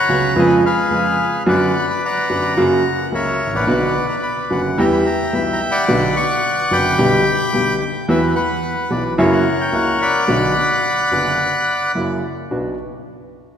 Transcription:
Already playing: bandoneon B4 C#5 F#5 A#5
0.09 grand piano C#2 C#3 F#3 B3 F#4
0.36 grand piano F2 C#3 F3 G#3 B3 F4, bandoneon G#4 B4 D#5
0.66 bandoneon G#4 B4 F5
0.91 grand piano F2 C#3 F3 G#3 B3 F4
1.46 grand piano F#2 D3 F#3 B3 F#4, bandoneon B4 D5 F#5
1.90 bandoneon B5
2.05 bandoneon D5 F#5 A#5
2.29 grand piano F#2 D3 F#3 B3 F#4
2.57 grand piano F#2 C#3 F#3 A#3 F#4
3.12 grand piano C#2 C#3 F#3 A#3 F#4, bandoneon A#4 C#5 E5
3.47 grand piano G#1
3.54 grand piano A1, bandoneon B4 D5 F#5
3.60 grand piano A#1
3.67 grand piano B1 B2 D3 F#3 B3 F#4
4.09 bandoneon A#5
4.23 bandoneon B5
4.50 grand piano F#1 F#2 D3 F#3 B3 F#4, bandoneon F#5
4.78 grand piano E2 E3 G3 B3 G4, bandoneon E5 G5 A#5
4.93 bandoneon B5
5.06 bandoneon A#5
5.33 grand piano B1 B2 E3 G3 B3 G4, bandoneon B5
5.53 bandoneon A#5
5.71 bandoneon D5 F#5 B5
5.88 grand piano B1 B2 D3 F#3 B3 F#4
6.16 bandoneon F#5 C#6
6.71 grand piano F#1 F#2 D3 F#3 B3 F#4, bandoneon G5 B5 D6
6.98 grand piano B1 B2 D3 G3 B3 G4
7.53 grand piano B1 B2 D3 G3 B3 G4
7.81 bandoneon G5
8.08 grand piano E2 E3 F#3 B3 F#4, bandoneon B4 E5
8.35 bandoneon B4 F#5
8.90 grand piano B1 B2 E3 F#3 B3 F#4, bandoneon D5
9.18 grand piano F#2 C#3 F#3 A#3 E4, bandoneon A#4 C#5 E5
9.32 bandoneon F#5
9.61 bandoneon G5
9.73 grand piano C#2 C#3 F#3 A#3 E4, bandoneon F#5
10.02 bandoneon D5 F#5 B5
10.28 grand piano B1 B2 D3 F#3 B3 F#4
11.11 grand piano F#1 F#2 D3 F#3 B3 F#4
11.95 grand piano F#2 C#3 F#3 A#3 E4
12.51 grand piano B1 B3 D4 F#4

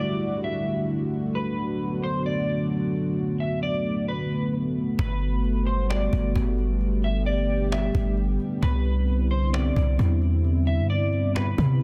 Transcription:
Already playing: analog synth pad D3 G3 A3 E4 F#4
0.00 clean electric guitar D5
0.44 clean electric guitar E5
1.35 analog synth pad F#3 A3 B3 F#4, clean electric guitar B4
2.03 clean electric guitar C5
2.26 clean electric guitar D5
3.40 clean electric guitar E5
3.63 clean electric guitar D5
4.08 clean electric guitar B4
4.99 808-style bass G1, analog synth pad G3 F#4, clean electric guitar B4, cajon bass
5.21 cajon slap
5.44 cajon slap
5.67 clean electric guitar C5, cajon slap
5.90 clean electric guitar D5, cajon slap
6.13 808-style bass G1, cajon bass
6.36 808-style bass G1, cajon bass
6.58 cajon slap
6.81 analog synth pad G4, cajon slap
7.03 clean electric guitar E5, cajon slap
7.26 clean electric guitar D5, cajon slap
7.72 clean electric guitar E5, cajon slap
7.95 808-style bass G1, cajon bass
8.17 cajon slap
8.40 cajon slap
8.63 808-style bass C2, analog synth pad D3 C4 E4, clean electric guitar B4, cajon bass
8.85 cajon slap
9.08 cajon slap
9.31 clean electric guitar C5, cajon slap
9.53 clean electric guitar D5, cajon slap
9.76 808-style bass C2, cajon bass
9.99 808-style bass E2, cajon bass
10.22 cajon slap
10.44 cajon slap
10.67 clean electric guitar E5, cajon slap
10.78 808-style bass G2
10.90 clean electric guitar D5, cajon slap
11.13 cajon slap
11.35 clean electric guitar B4, cajon slap
11.58 808-style bass C3, cajon bass
11.64 cajon slap
11.69 cajon slap
11.75 cajon slap

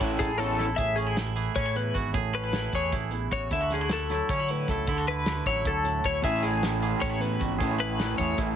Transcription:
Already playing: clean electric guitar A2 E4
0.00 fingered electric bass A1, clean electric guitar E3, overdriven electric guitar C#4 E4 A4 C#5, kick, snare, closed hi-hat
0.19 fingered electric bass A1, clean electric guitar G#4 A4, kick, closed hi-hat
0.38 clean electric guitar E2 A4, overdriven electric guitar C#4 E4 A4 C#5, closed hi-hat
0.59 clean electric guitar E4, snare, closed hi-hat
0.76 fingered electric bass A1, clean electric guitar A2 G#4 E5, kick, closed hi-hat
0.96 clean electric guitar C#4 G#4, closed hi-hat
1.07 clean electric guitar E4
1.17 snare, closed hi-hat
1.36 clean electric guitar E3 G#4, closed hi-hat
1.55 fingered electric bass A2, clean electric guitar C#4 C#5, kick, closed hi-hat
1.66 clean electric guitar E4
1.76 clean electric guitar E2 B4, closed hi-hat
1.94 fingered electric bass G#1, clean electric guitar F#4, kick, closed hi-hat
2.13 fingered electric bass A1, clean electric guitar A2 G#4, kick, closed hi-hat
2.33 clean electric guitar C#4 B4, closed hi-hat
2.44 clean electric guitar E4
2.53 snare, closed hi-hat
2.73 fingered electric bass E2, clean electric guitar E3 G#4 C#5, kick, closed hi-hat
2.92 fingered electric bass A1, clean electric guitar E4, kick, closed hi-hat
3.11 clean electric guitar E2, closed hi-hat
3.31 fingered electric bass A1, clean electric guitar F#4 C#5, kick, snare, closed hi-hat
3.51 fingered electric bass D2, clean electric guitar D3 E4 E5, kick, closed hi-hat
3.61 clean electric guitar F#4
3.70 clean electric guitar C#4 G#4, snare, closed hi-hat
3.81 clean electric guitar E4
3.89 clean electric guitar A4, snare, closed hi-hat
4.10 clean electric guitar F#3 E4, snare, closed hi-hat
4.29 fingered electric bass D3, clean electric guitar C#4 C#5, kick, closed hi-hat
4.40 clean electric guitar E4
4.48 clean electric guitar A2 B4, closed hi-hat
4.68 fingered electric bass C#2, clean electric guitar E4 A4, kick, snare, closed hi-hat
4.87 fingered electric bass D2, clean electric guitar D3 E4, kick, closed hi-hat
4.98 clean electric guitar F#4
5.07 clean electric guitar E4 B4, closed hi-hat
5.26 snare, closed hi-hat
5.46 fingered electric bass A1, clean electric guitar F#3 E4 C#5, kick, closed hi-hat
5.65 fingered electric bass D2, clean electric guitar E4 A4, kick, closed hi-hat
5.84 clean electric guitar A2, closed hi-hat
6.04 fingered electric bass D2, clean electric guitar E4 C#5, kick, closed hi-hat
6.22 fingered electric bass A1, overdriven electric guitar A2 E3 A3 C#4 E4, clean electric guitar A2 G#4 E5, kick, closed hi-hat
6.43 clean electric guitar E4 G#4, closed hi-hat
6.63 snare, closed hi-hat
6.82 clean electric guitar E3 G#4, closed hi-hat
6.99 fingered electric bass A2, clean electric guitar C#4 C#5, kick, snare, closed hi-hat
7.10 clean electric guitar E4
7.19 clean electric guitar E2 B4, closed hi-hat
7.39 fingered electric bass G#1, clean electric guitar F#4, kick, closed hi-hat
7.58 fingered electric bass A1, clean electric guitar A2 G#4, overdriven electric guitar A2 E3 A3, kick, closed hi-hat
7.62 overdriven electric guitar C#4 E4
7.79 clean electric guitar E4 B4, closed hi-hat
8.00 snare, closed hi-hat
8.18 fingered electric bass E2, clean electric guitar E3 G#4 C#5, kick, snare, closed hi-hat
8.38 fingered electric bass A1, clean electric guitar E4, kick, closed hi-hat

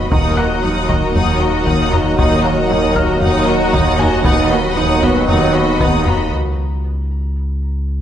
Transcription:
Already playing: viola section F#4, analog synth pad B4, violin section D#5 B5
0.11 sub bass D#1, cello section D#2, double bass section D#2, synth arpeggio sound D#3, trombone section D#3 F#3, analog synth pad F#3 D#4 F#4 A#4, french horn section A#3 D#4, viola section D#4, violin section F#5 D#6, taiko
0.37 synth arpeggio sound A#3, viola section F#4, violin section D#5 A#5, grand piano F#5 F#6
0.63 cello section D#2, double bass section D#2, synth arpeggio sound F#3, viola section D#4, violin section F#5 D#6
0.89 synth arpeggio sound D#3, viola section F#4, violin section D#5 A#5, taiko
1.14 cello section D#2, double bass section D#2, synth arpeggio sound F#3, viola section D#4, violin section F#5 D#6, taiko low
1.40 viola section F#4, violin section D#5 A#5
1.65 cello section D#2, double bass section D#2, synth arpeggio sound D#3, viola section D#4, violin section F#5 D#6, taiko
1.92 viola section F#4, violin section D#5 A#5, taiko low
2.17 cello section D#2, double bass section D#2, synth arpeggio sound D#3, viola section D#4, violin section F#5 D#6, taiko
2.43 synth arpeggio sound A#3, viola section F#4, violin section D#5 A#5
2.68 cello section D#2, double bass section D#2, synth arpeggio sound F#3, viola section D#4, violin section F#5 D#6
2.96 synth arpeggio sound D#3, viola section F#4, violin section D#5 A#5, grand piano F6, taiko
3.21 cello section D#2, double bass section D#2, synth arpeggio sound F#3, viola section D#4, violin section F#5 D#6, taiko low
3.48 viola section F#4, violin section D#5 A#5
3.73 cello section D#2, double bass section D#2, synth arpeggio sound D#3, viola section D#4, violin section F#5 D#6, taiko
3.99 viola section F#4, violin section D#5 A#5, grand piano G#5, taiko low
4.24 cello section D#2, double bass section D#2, trombone section D#3 F#3, french horn section B3 D#4, synth arpeggio sound B3, viola section D#4, analog synth pad B4, violin section F#5 D#6, taiko
4.51 viola section F#4, synth arpeggio sound F#4, violin section D#5 B5
4.77 cello section D#2, double bass section D#2, synth arpeggio sound D#4, viola section D#4, violin section F#5 D#6
5.02 synth arpeggio sound B3, viola section F#4, violin section D#5 B5, taiko
5.28 cello section D#2, double bass section D#2, viola section D#4, synth arpeggio sound D#4, violin section F#5 D#6, taiko low
5.54 viola section F#4, violin section D#5 B5
5.79 cello section D#2, double bass section D#2, synth arpeggio sound B3, viola section D#4, violin section F#5 D#6, taiko
6.05 viola section F#4, violin section D#5 B5, grand piano A#5, taiko low
6.33 sub bass C#2

